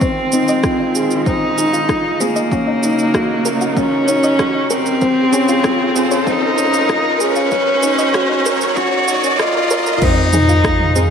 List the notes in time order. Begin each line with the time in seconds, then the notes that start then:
Already playing: C4, riser
0.01 D#3 G#3 C4 D#4 F4, kick, shaker
0.32 C4 D#4, shaker
0.48 D#5, shaker
0.64 F4, kick, cross-stick, shaker
0.80 D#4
0.95 G#4, shaker
1.11 shaker
1.26 C4 D#4, kick, shaker
1.57 D#4 G#4, shaker
1.73 F4, shaker
1.89 D#4 F4, kick, cross-stick, shaker
2.20 A#3 C4 G#4, shaker
2.36 D#5, shaker
2.51 C#3 F#3 C#4 D#4 F#4, kick, shaker
2.67 D#4
2.83 D#4, shaker
2.99 shaker
3.14 F#4, kick, cross-stick, shaker
3.45 A#4, shaker
3.61 F#4, shaker
3.76 C#4 D#4, kick, shaker
4.08 C#4 D#4, shaker
4.23 D#5, shaker
4.39 F#4, kick, cross-stick, shaker
4.55 D#4
4.70 C4 A#4, shaker
4.86 shaker
5.01 C#3 C4 F4 C5, kick, shaker
5.32 C#4 G#4, shaker
5.48 F4, shaker
5.64 C#4 F4, kick, cross-stick, shaker
5.96 C4 G#4, shaker
6.11 C#5, shaker
6.27 C4 D#4 F4, kick, shaker
6.43 C#4
6.58 C#4, shaker
6.74 shaker
6.89 F4, kick, cross-stick, shaker
7.20 C#4 G#4, shaker
7.36 F4, shaker
7.51 D#3 F#3 C#4 D#4, kick, shaker
7.83 C#4 D#4, shaker
7.99 D#5, shaker
8.14 F#4, kick, cross-stick, shaker
8.29 D#4
8.46 A#4, shaker
8.61 shaker
8.77 C#4 F#4, kick, shaker
9.08 D#4 F#4, shaker
9.24 C#4, shaker
9.39 F4 A#4 D#5, kick, cross-stick, shaker
9.55 A#4
9.70 A#4 C#5, shaker
9.86 A#4, shaker
10.02 F2 D#3 G#3 C4 D#4 F4, kick, crash, shaker
10.33 D#4 G#4, mid tom, shaker
10.49 F4, shaker
10.64 D#4 F4, kick, cross-stick, shaker
10.80 mid tom
10.95 C4 G#4, shaker